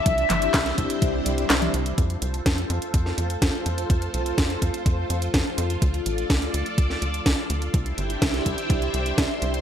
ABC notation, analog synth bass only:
X:1
M:4/4
L:1/8
Q:1/4=125
K:F
V:1 name="Analog synth bass" clef=bass
C,, G,,, C,, C,, C,, C,, C,, C,, | F,, C,, F,, F,, F,, F,, F,, F,, | F,, C,, F,, F,, F,, F,, F,, F,, | D,, A,,, D,, D,, D,, D,, D,, D,, |
C,, G,,, C,, C,, C,, C,, C,, C,, |]